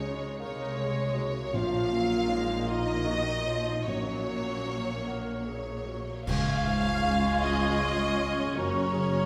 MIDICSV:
0, 0, Header, 1, 12, 480
1, 0, Start_track
1, 0, Key_signature, -5, "major"
1, 0, Tempo, 760456
1, 980, Time_signature, 6, 3, 24, 8
1, 1946, Tempo, 796813
1, 3866, Tempo, 760456
1, 5751, End_track
2, 0, Start_track
2, 0, Title_t, "Flute"
2, 0, Program_c, 0, 73
2, 3872, Note_on_c, 0, 85, 83
2, 5289, Note_off_c, 0, 85, 0
2, 5310, Note_on_c, 0, 85, 77
2, 5751, Note_off_c, 0, 85, 0
2, 5751, End_track
3, 0, Start_track
3, 0, Title_t, "Cor anglais"
3, 0, Program_c, 1, 69
3, 3882, Note_on_c, 1, 80, 75
3, 5293, Note_off_c, 1, 80, 0
3, 5320, Note_on_c, 1, 70, 75
3, 5751, Note_off_c, 1, 70, 0
3, 5751, End_track
4, 0, Start_track
4, 0, Title_t, "Violin section"
4, 0, Program_c, 2, 48
4, 0, Note_on_c, 2, 73, 62
4, 252, Note_off_c, 2, 73, 0
4, 260, Note_on_c, 2, 73, 71
4, 964, Note_off_c, 2, 73, 0
4, 975, Note_on_c, 2, 77, 88
4, 1693, Note_on_c, 2, 75, 94
4, 1700, Note_off_c, 2, 77, 0
4, 2415, Note_on_c, 2, 73, 66
4, 2416, Note_off_c, 2, 75, 0
4, 3129, Note_off_c, 2, 73, 0
4, 3138, Note_on_c, 2, 73, 79
4, 3839, Note_off_c, 2, 73, 0
4, 3867, Note_on_c, 2, 77, 110
4, 4581, Note_off_c, 2, 77, 0
4, 4600, Note_on_c, 2, 75, 101
4, 5314, Note_off_c, 2, 75, 0
4, 5316, Note_on_c, 2, 73, 88
4, 5751, Note_off_c, 2, 73, 0
4, 5751, End_track
5, 0, Start_track
5, 0, Title_t, "Violin section"
5, 0, Program_c, 3, 48
5, 0, Note_on_c, 3, 73, 76
5, 239, Note_off_c, 3, 73, 0
5, 264, Note_on_c, 3, 73, 74
5, 966, Note_off_c, 3, 73, 0
5, 980, Note_on_c, 3, 77, 87
5, 1698, Note_on_c, 3, 75, 99
5, 1702, Note_off_c, 3, 77, 0
5, 2418, Note_on_c, 3, 73, 82
5, 2419, Note_off_c, 3, 75, 0
5, 3629, Note_off_c, 3, 73, 0
5, 3873, Note_on_c, 3, 68, 82
5, 5289, Note_off_c, 3, 68, 0
5, 5316, Note_on_c, 3, 70, 79
5, 5751, Note_off_c, 3, 70, 0
5, 5751, End_track
6, 0, Start_track
6, 0, Title_t, "Felt piano"
6, 0, Program_c, 4, 0
6, 0, Control_c, 4, 64, 127
6, 0, Note_on_c, 4, 37, 49
6, 0, Note_on_c, 4, 56, 35
6, 12, Note_on_c, 4, 73, 40
6, 162, Note_off_c, 4, 56, 0
6, 235, Note_off_c, 4, 37, 0
6, 251, Note_on_c, 4, 77, 41
6, 398, Note_off_c, 4, 73, 0
6, 487, Note_on_c, 4, 68, 47
6, 637, Note_off_c, 4, 77, 0
6, 724, Note_on_c, 4, 73, 51
6, 877, Note_off_c, 4, 68, 0
6, 967, Note_on_c, 4, 34, 66
6, 972, Note_off_c, 4, 73, 0
6, 990, Control_c, 4, 64, 0
6, 1082, Control_c, 4, 64, 127
6, 1206, Note_on_c, 4, 58, 41
6, 1447, Note_on_c, 4, 73, 51
6, 1598, Note_off_c, 4, 58, 0
6, 1693, Note_on_c, 4, 77, 59
6, 1842, Note_off_c, 4, 73, 0
6, 1935, Note_on_c, 4, 70, 56
6, 2083, Note_off_c, 4, 77, 0
6, 2176, Note_on_c, 4, 73, 49
6, 2319, Note_off_c, 4, 70, 0
6, 2391, Note_off_c, 4, 34, 0
6, 2417, Note_off_c, 4, 73, 0
6, 2421, Note_on_c, 4, 34, 50
6, 2432, Control_c, 4, 64, 0
6, 2554, Control_c, 4, 64, 127
6, 2664, Note_on_c, 4, 58, 38
6, 2904, Note_on_c, 4, 73, 43
6, 3051, Note_off_c, 4, 58, 0
6, 3143, Note_on_c, 4, 78, 46
6, 3290, Note_off_c, 4, 73, 0
6, 3389, Note_on_c, 4, 70, 38
6, 3532, Note_off_c, 4, 78, 0
6, 3623, Note_on_c, 4, 73, 41
6, 3774, Note_off_c, 4, 70, 0
6, 3843, Note_off_c, 4, 34, 0
6, 3864, Note_off_c, 4, 73, 0
6, 3877, Note_on_c, 4, 37, 73
6, 3878, Control_c, 4, 64, 0
6, 3968, Control_c, 4, 64, 127
6, 4115, Note_on_c, 4, 44, 52
6, 4355, Note_on_c, 4, 56, 54
6, 4501, Note_off_c, 4, 44, 0
6, 4599, Note_on_c, 4, 65, 54
6, 4740, Note_off_c, 4, 56, 0
6, 4846, Note_on_c, 4, 73, 55
6, 4980, Note_off_c, 4, 65, 0
6, 5081, Note_on_c, 4, 65, 60
6, 5221, Note_off_c, 4, 73, 0
6, 5291, Note_off_c, 4, 37, 0
6, 5315, Note_off_c, 4, 65, 0
6, 5323, Note_on_c, 4, 42, 71
6, 5324, Control_c, 4, 64, 0
6, 5414, Control_c, 4, 64, 127
6, 5554, Note_on_c, 4, 49, 45
6, 5751, Note_off_c, 4, 42, 0
6, 5751, Note_off_c, 4, 49, 0
6, 5751, End_track
7, 0, Start_track
7, 0, Title_t, "Clarinet"
7, 0, Program_c, 5, 71
7, 25, Note_on_c, 5, 68, 62
7, 252, Note_on_c, 5, 70, 75
7, 261, Note_off_c, 5, 68, 0
7, 493, Note_on_c, 5, 68, 65
7, 503, Note_off_c, 5, 70, 0
7, 724, Note_on_c, 5, 66, 67
7, 734, Note_off_c, 5, 68, 0
7, 963, Note_off_c, 5, 66, 0
7, 966, Note_on_c, 5, 65, 76
7, 1201, Note_on_c, 5, 61, 63
7, 1210, Note_off_c, 5, 65, 0
7, 1440, Note_on_c, 5, 63, 62
7, 1449, Note_off_c, 5, 61, 0
7, 1676, Note_off_c, 5, 63, 0
7, 1680, Note_on_c, 5, 65, 82
7, 1934, Note_on_c, 5, 66, 74
7, 1943, Note_off_c, 5, 65, 0
7, 2164, Note_on_c, 5, 65, 70
7, 2173, Note_off_c, 5, 66, 0
7, 2405, Note_on_c, 5, 66, 66
7, 2414, Note_off_c, 5, 65, 0
7, 3040, Note_off_c, 5, 66, 0
7, 3142, Note_on_c, 5, 70, 66
7, 3380, Note_on_c, 5, 68, 58
7, 3389, Note_off_c, 5, 70, 0
7, 3631, Note_on_c, 5, 66, 55
7, 3640, Note_off_c, 5, 68, 0
7, 3868, Note_off_c, 5, 66, 0
7, 4602, Note_on_c, 5, 65, 81
7, 5313, Note_on_c, 5, 66, 80
7, 5323, Note_off_c, 5, 65, 0
7, 5547, Note_on_c, 5, 68, 83
7, 5556, Note_off_c, 5, 66, 0
7, 5751, Note_off_c, 5, 68, 0
7, 5751, End_track
8, 0, Start_track
8, 0, Title_t, "French horn section"
8, 0, Program_c, 6, 60
8, 0, Note_on_c, 6, 61, 70
8, 166, Note_off_c, 6, 61, 0
8, 273, Note_on_c, 6, 73, 71
8, 971, Note_off_c, 6, 73, 0
8, 984, Note_on_c, 6, 65, 100
8, 1700, Note_on_c, 6, 63, 79
8, 1704, Note_off_c, 6, 65, 0
8, 2420, Note_off_c, 6, 63, 0
8, 2426, Note_on_c, 6, 61, 71
8, 3609, Note_off_c, 6, 61, 0
8, 3868, Note_on_c, 6, 56, 86
8, 3869, Note_on_c, 6, 61, 86
8, 5286, Note_off_c, 6, 56, 0
8, 5302, Note_on_c, 6, 58, 82
8, 5751, Note_off_c, 6, 58, 0
8, 5751, Note_off_c, 6, 61, 0
8, 5751, End_track
9, 0, Start_track
9, 0, Title_t, "Viola section"
9, 0, Program_c, 7, 48
9, 0, Note_on_c, 7, 63, 57
9, 13, Note_on_c, 7, 56, 61
9, 241, Note_off_c, 7, 63, 0
9, 245, Note_off_c, 7, 56, 0
9, 249, Note_on_c, 7, 63, 65
9, 253, Note_on_c, 7, 56, 69
9, 488, Note_off_c, 7, 63, 0
9, 489, Note_on_c, 7, 73, 64
9, 734, Note_off_c, 7, 73, 0
9, 738, Note_on_c, 7, 58, 67
9, 975, Note_off_c, 7, 56, 0
9, 975, Note_on_c, 7, 53, 65
9, 1209, Note_on_c, 7, 54, 70
9, 1213, Note_off_c, 7, 53, 0
9, 1444, Note_on_c, 7, 56, 72
9, 1455, Note_off_c, 7, 54, 0
9, 1677, Note_off_c, 7, 58, 0
9, 1685, Note_on_c, 7, 58, 81
9, 1694, Note_off_c, 7, 56, 0
9, 1930, Note_on_c, 7, 51, 67
9, 1938, Note_off_c, 7, 58, 0
9, 2174, Note_off_c, 7, 51, 0
9, 2174, Note_on_c, 7, 53, 66
9, 2415, Note_on_c, 7, 58, 70
9, 2416, Note_off_c, 7, 53, 0
9, 2416, Note_on_c, 7, 54, 62
9, 3718, Note_off_c, 7, 58, 0
9, 3719, Note_off_c, 7, 54, 0
9, 3861, Note_on_c, 7, 65, 92
9, 3868, Note_on_c, 7, 61, 87
9, 5283, Note_off_c, 7, 65, 0
9, 5310, Note_on_c, 7, 66, 90
9, 5751, Note_off_c, 7, 61, 0
9, 5751, Note_off_c, 7, 66, 0
9, 5751, End_track
10, 0, Start_track
10, 0, Title_t, "Cello section"
10, 0, Program_c, 8, 48
10, 0, Note_on_c, 8, 49, 58
10, 260, Note_off_c, 8, 49, 0
10, 265, Note_on_c, 8, 48, 55
10, 976, Note_on_c, 8, 46, 68
10, 981, Note_off_c, 8, 48, 0
10, 2409, Note_off_c, 8, 46, 0
10, 2417, Note_on_c, 8, 46, 64
10, 3719, Note_off_c, 8, 46, 0
10, 3869, Note_on_c, 8, 37, 81
10, 5287, Note_off_c, 8, 37, 0
10, 5313, Note_on_c, 8, 42, 76
10, 5751, Note_off_c, 8, 42, 0
10, 5751, End_track
11, 0, Start_track
11, 0, Title_t, "Double bass section"
11, 0, Program_c, 10, 48
11, 0, Note_on_c, 10, 37, 48
11, 252, Note_on_c, 10, 36, 57
11, 259, Note_off_c, 10, 37, 0
11, 974, Note_off_c, 10, 36, 0
11, 975, Note_on_c, 10, 34, 67
11, 2405, Note_off_c, 10, 34, 0
11, 2412, Note_on_c, 10, 34, 49
11, 3717, Note_off_c, 10, 34, 0
11, 3870, Note_on_c, 10, 37, 69
11, 5287, Note_off_c, 10, 37, 0
11, 5310, Note_on_c, 10, 30, 64
11, 5751, Note_off_c, 10, 30, 0
11, 5751, End_track
12, 0, Start_track
12, 0, Title_t, "Drums"
12, 3868, Note_on_c, 9, 35, 82
12, 3868, Note_on_c, 9, 49, 80
12, 3931, Note_off_c, 9, 35, 0
12, 3931, Note_off_c, 9, 49, 0
12, 5751, End_track
0, 0, End_of_file